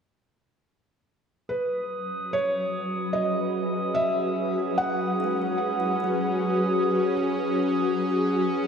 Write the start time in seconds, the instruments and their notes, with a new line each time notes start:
1.47 synth drone F#3 C#4, ambient pad F#3, felt piano B4, glass harmonica D#6
2.05 ambient pad F#4
2.18 ambient pad B4
2.33 felt piano C#5
2.55 ambient pad G#4
3.13 felt piano D#5
3.95 felt piano E5
4.78 felt piano F#5
5.20 kalimba G#3 D#4
5.42 kalimba B4
5.80 kalimba E4
6.00 kalimba F#3 G#4
8.25 ambient pad C#5